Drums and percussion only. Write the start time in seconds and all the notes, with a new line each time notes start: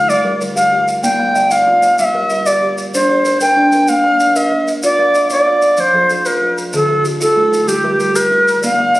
0.10 maracas
0.41 maracas
0.57 maracas
0.88 maracas
1.04 maracas
1.36 maracas
1.51 maracas
1.83 maracas
1.98 maracas
2.30 maracas
2.46 maracas
2.78 maracas
2.94 maracas
3.25 maracas
3.41 maracas
3.72 maracas
3.88 maracas
4.20 maracas
4.36 maracas
4.68 maracas
4.83 maracas
5.15 maracas
5.30 maracas
5.62 maracas
5.77 maracas
6.10 maracas
6.25 maracas
6.58 maracas
6.73 maracas
7.05 maracas
7.21 maracas
7.53 maracas
7.68 maracas
8.00 maracas
8.16 maracas
8.48 maracas
8.63 maracas
8.95 maracas